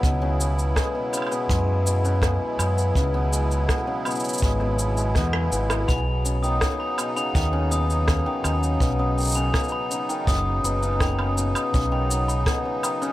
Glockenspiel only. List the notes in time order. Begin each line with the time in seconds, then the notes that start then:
5.88 B5
6.43 D#6
6.80 B5
7.17 B5
7.71 D#6
8.08 B5
8.44 B5
9.00 D#6
9.35 B5
9.72 B5
10.27 D#6
10.64 B5
11.01 B5
11.56 D#6
11.92 B5
12.28 B5
12.84 D#6